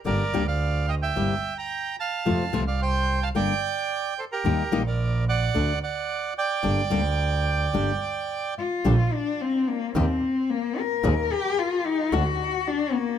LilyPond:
<<
  \new Staff \with { instrumentName = "Bandoneon" } { \time 4/4 \key g \minor \tempo 4 = 110 <bes' d''>8. <d'' f''>8. <ees'' g''>16 <e'' g''>4 <g'' bes''>8. <f'' a''>8~ | <f'' a''>8. <d'' f''>16 <c'' g''>8. <f'' a''>16 <d'' g''>4. <a' c''>16 <g' bes'>16~ | <g' bes'>8. <bes' d''>8. <d'' fis''>4 <d'' fis''>4 <d'' g''>8~ | <d'' g''>2.~ <d'' g''>8 r8 |
\key bes \major r1 | r1 | }
  \new Staff \with { instrumentName = "Cello" } { \time 4/4 \key g \minor r1 | r1 | r1 | r2. r8 f'8~ |
\key bes \major f'8 d'8 c'8 bes8 c'4 bes8 bes'8~ | bes'8 g'8 f'8 ees'8 fis'4 d'8 bes8 | }
  \new Staff \with { instrumentName = "Nylon-string guitar" } { \time 4/4 \key g \minor <d g bes d' g'>8 <d g bes d' g'>8 r4 <c g bes e' g'>8 r4. | <c f a c' f'>8 <c f a c' f'>8 r4 <d g bes d' g'>8 r4. | <ees g bes ees' g'>8 <ees g bes ees' g'>8 r4 <d a d' fis'>8 r4. | <d g bes d' g'>8 <d g bes d' g'>8 r4 <d g bes d' g'>8 r4. |
\key bes \major <d g d' g'>8 r4. <ees bes ees' g'>8 r4. | <ees bes c' aes'>8 r4. <d a d' fis'>8 r4. | }
  \new Staff \with { instrumentName = "Double bass" } { \clef bass \time 4/4 \key g \minor g,,8 d,4. g,,8 r4. | f,8 c,4. g,,8 r4. | ees,8 bes,,4. d,8 r4. | g,,8 d,4. g,,8 r4. |
\key bes \major bes,,8 r4. ees,8 r4. | ees,8 r4. d,8 r4. | }
>>